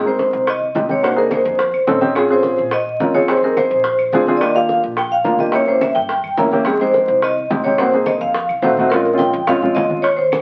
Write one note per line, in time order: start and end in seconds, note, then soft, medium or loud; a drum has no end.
0.05 0.45 G#3 medium
0.05 0.45 C4 medium
0.05 0.45 D#4 medium
0.05 0.45 A#4 medium
0.05 0.50 C5 medium
0.05 high bongo soft
0.05 high conga soft
0.19 high bongo medium
0.19 high conga medium
0.33 0.72 C2 medium
0.33 high bongo soft
0.33 high conga soft
0.47 0.92 D#5 medium
0.47 high bongo medium
0.47 high conga soft
0.47 claves medium
0.61 high conga soft
0.75 1.40 C2 medium
0.75 0.85 G#3 medium
0.75 0.85 C4 medium
0.75 0.85 D#4 medium
0.75 0.85 G4 medium
0.75 high bongo soft
0.75 low bongo medium
0.75 high conga medium
0.89 0.99 G#3 medium
0.89 0.99 C4 medium
0.89 0.99 D#4 medium
0.89 0.99 G4 medium
0.89 0.97 C#5 medium
0.89 high bongo soft
0.89 high conga medium
1.03 1.13 A#3 medium
1.03 1.13 D4 medium
1.03 1.13 D#4 medium
1.03 1.13 F#4 medium
1.03 1.18 C5 medium
1.03 high bongo medium
1.03 high conga soft
1.03 claves medium
1.16 1.56 A#3 medium
1.16 1.56 D4 medium
1.16 1.56 D#4 medium
1.16 1.56 G#4 medium
1.16 1.32 A#4 medium
1.16 high bongo soft
1.16 high conga soft
1.31 1.99 C5 medium
1.31 high bongo medium
1.31 high conga medium
1.31 claves medium
1.45 1.72 F2 loud
1.45 high bongo soft
1.45 high conga soft
1.59 high bongo medium
1.59 high conga soft
1.73 1.87 C2 medium
1.73 high conga soft
1.73 claves medium
1.87 2.53 A#1 medium
1.87 1.97 C4 medium
1.87 1.98 C#4 medium
1.87 1.98 D#4 medium
1.87 1.98 A4 medium
1.87 high bongo soft
1.87 low bongo medium
1.87 high conga medium
2.01 2.11 C4 loud
2.01 2.12 C#4 medium
2.01 2.11 D#4 medium
2.01 2.12 G4 medium
2.01 high bongo soft
2.01 high conga medium
2.15 2.26 C4 medium
2.15 2.26 C#4 medium
2.15 2.26 F4 medium
2.15 2.26 G#4 medium
2.15 2.23 G#4 medium
2.15 high bongo medium
2.15 high conga soft
2.15 claves medium
2.29 2.69 C4 medium
2.29 2.69 C#4 medium
2.29 2.70 F4 medium
2.29 2.70 G#4 medium
2.29 2.74 C5 medium
2.29 high bongo soft
2.29 high conga soft
2.43 high bongo medium
2.43 high conga medium
2.57 2.98 A#2 medium
2.57 high bongo soft
2.57 high conga soft
2.71 3.16 D#5 medium
2.71 high bongo medium
2.71 high conga soft
2.71 claves medium
2.86 high conga soft
3.00 3.65 F2 medium
3.00 3.10 C4 medium
3.00 3.11 C#4 medium
3.00 3.11 F4 medium
3.00 3.11 A#4 medium
3.00 high bongo soft
3.00 low bongo medium
3.00 high conga medium
3.15 3.24 C4 medium
3.15 3.25 C#4 medium
3.15 3.25 F4 medium
3.15 3.25 G#4 medium
3.15 3.28 C#5 medium
3.15 high bongo soft
3.15 high conga medium
3.28 3.38 C4 medium
3.28 3.38 D#4 medium
3.28 3.38 G4 medium
3.28 3.39 G#4 medium
3.28 3.43 C5 medium
3.28 high bongo medium
3.28 high conga soft
3.28 claves medium
3.43 3.83 C4 medium
3.43 3.83 D#4 medium
3.43 3.83 G4 medium
3.43 3.83 G#4 medium
3.43 3.50 A#4 medium
3.43 high bongo soft
3.43 high conga soft
3.57 4.24 C5 medium
3.57 high bongo medium
3.57 high conga medium
3.57 claves medium
3.71 4.10 A#1 medium
3.71 high bongo soft
3.71 high conga soft
3.84 high bongo medium
3.84 high conga soft
3.98 high conga soft
3.98 claves medium
4.13 4.78 D#2 medium
4.13 4.23 C4 medium
4.13 4.23 D4 medium
4.13 4.23 F4 medium
4.13 4.23 G#4 loud
4.13 high bongo soft
4.13 low bongo medium
4.13 high conga medium
4.26 4.37 C4 medium
4.26 4.38 D4 medium
4.26 4.38 F4 medium
4.26 4.38 G#4 loud
4.26 high bongo soft
4.26 high conga medium
4.37 4.51 A#3 medium
4.37 4.41 D5 medium
4.37 claves medium
4.41 4.51 D4 medium
4.41 4.51 F4 medium
4.41 4.51 G4 medium
4.41 4.48 D#5 medium
4.41 high bongo medium
4.54 4.94 A#3 medium
4.54 4.95 D4 medium
4.54 4.94 F4 medium
4.54 4.95 G4 medium
4.54 4.82 F5 loud
4.54 high bongo soft
4.54 high conga soft
4.69 high bongo medium
4.69 high conga medium
4.83 5.23 A#1 medium
4.83 high bongo soft
4.83 high conga soft
4.97 5.11 G5 medium
4.97 high bongo medium
4.97 high conga soft
4.97 claves medium
5.11 5.38 F5 medium
5.11 high conga soft
5.24 5.90 C2 medium
5.24 5.35 A#3 medium
5.24 5.35 D4 medium
5.24 5.35 F4 medium
5.24 5.35 A#4 medium
5.24 high bongo soft
5.24 low bongo medium
5.24 high conga medium
5.38 5.49 A#3 medium
5.38 5.49 D4 medium
5.38 5.49 F4 medium
5.38 5.50 G4 medium
5.38 5.53 D#5 medium
5.38 high bongo soft
5.38 high conga medium
5.52 5.63 A#3 medium
5.52 5.63 C#4 medium
5.52 5.63 E4 medium
5.52 5.63 G4 medium
5.52 5.68 C#5 medium
5.52 high bongo medium
5.52 high conga soft
5.52 claves medium
5.66 6.07 A#3 medium
5.66 6.07 C#4 medium
5.66 6.07 E4 medium
5.66 6.07 G4 medium
5.66 5.74 C5 medium
5.66 high bongo soft
5.66 high conga soft
5.81 5.96 E5 loud
5.81 high bongo medium
5.81 high conga medium
5.81 claves medium
5.95 6.22 G2 loud
5.95 6.48 G5 loud
5.95 high bongo soft
5.95 high conga soft
6.09 high bongo medium
6.09 high conga soft
6.24 6.37 G2 medium
6.24 high conga soft
6.24 claves medium
6.38 7.03 F2 medium
6.38 6.48 A#3 medium
6.38 6.48 C#4 medium
6.38 6.48 E4 medium
6.38 6.48 A#4 medium
6.38 high bongo soft
6.38 low bongo medium
6.38 high conga medium
6.51 6.62 A#3 medium
6.51 6.62 C#4 medium
6.51 6.62 E4 medium
6.51 6.62 G4 loud
6.51 high bongo soft
6.51 high conga medium
6.65 6.76 G#3 medium
6.65 6.76 C4 medium
6.65 6.76 D#4 medium
6.65 6.76 G4 medium
6.65 6.80 G#4 medium
6.65 high bongo medium
6.65 high conga soft
6.65 claves medium
6.80 7.20 G#3 medium
6.80 7.20 C4 medium
6.80 7.20 D#4 medium
6.80 7.20 G4 medium
6.80 7.24 C5 medium
6.80 high bongo soft
6.80 high conga soft
6.94 high bongo medium
6.94 high conga medium
7.08 7.48 C2 medium
7.08 high bongo soft
7.08 high conga soft
7.22 7.49 D#5 loud
7.22 high bongo medium
7.22 high conga soft
7.22 claves medium
7.37 high conga soft
7.50 8.16 C2 medium
7.50 7.60 G#3 medium
7.50 7.61 C4 medium
7.50 7.61 D#4 medium
7.50 7.60 G4 medium
7.50 high bongo soft
7.50 low bongo medium
7.50 high conga medium
7.64 7.75 G#3 medium
7.64 7.75 C4 medium
7.64 7.75 D#4 medium
7.64 7.75 G4 medium
7.64 7.77 C#5 medium
7.64 high bongo soft
7.64 high conga medium
7.78 7.89 A#3 medium
7.78 7.89 C4 medium
7.78 7.89 D#4 medium
7.78 7.89 F#4 medium
7.78 8.08 C5 medium
7.78 high bongo medium
7.78 high conga soft
7.78 claves medium
7.92 8.33 A#3 medium
7.92 8.33 C4 medium
7.92 8.33 D#4 medium
7.92 8.33 G#4 medium
7.92 high bongo soft
7.92 high conga soft
8.06 8.20 D#5 medium
8.06 high bongo medium
8.06 high conga medium
8.06 claves medium
8.20 8.47 F2 loud
8.20 8.73 F5 medium
8.20 high bongo soft
8.20 high conga soft
8.34 high bongo medium
8.34 high conga soft
8.48 8.62 C2 medium
8.48 high conga soft
8.48 claves medium
8.62 9.28 A#1 medium
8.62 8.73 A3 medium
8.62 8.74 C4 medium
8.62 8.74 D#4 medium
8.62 8.74 F#4 medium
8.62 8.89 C5 medium
8.62 high bongo soft
8.62 low bongo medium
8.62 high conga medium
8.77 8.88 A3 medium
8.77 8.88 C4 medium
8.77 8.88 D#4 medium
8.77 8.88 F#4 loud
8.77 high bongo soft
8.77 high conga medium
8.90 9.07 G#3 medium
8.90 9.07 C4 medium
8.90 9.07 C#4 medium
8.90 9.07 F4 medium
8.90 9.20 A#4 medium
8.90 high bongo medium
8.90 high conga soft
8.90 claves medium
9.05 high bongo soft
9.05 high conga soft
9.14 9.38 G#3 medium
9.14 9.37 C4 medium
9.14 9.37 C#4 medium
9.14 9.38 F4 medium
9.18 9.45 G5 medium
9.18 high bongo medium
9.18 high conga medium
9.33 9.73 F2 loud
9.33 high bongo soft
9.33 high conga soft
9.47 9.58 G#3 medium
9.47 9.58 C4 medium
9.47 9.58 C#4 medium
9.47 9.58 F4 medium
9.47 9.76 F5 medium
9.47 high bongo medium
9.47 high conga soft
9.47 low conga medium
9.47 claves medium
9.62 10.01 G#3 medium
9.62 10.02 C4 medium
9.62 10.02 C#4 medium
9.62 10.02 F4 medium
9.62 high bongo soft
9.62 high conga soft
9.62 low conga medium
9.75 10.40 D#2 medium
9.75 10.04 D#5 medium
9.75 high bongo soft
9.75 low bongo medium
9.75 high conga medium
9.90 high conga medium
10.02 10.17 C#5 medium
10.02 high bongo medium
10.02 claves medium
10.17 10.42 C5 medium
10.17 high bongo soft
10.17 high conga soft
10.32 high bongo medium
10.32 high conga medium
10.32 claves medium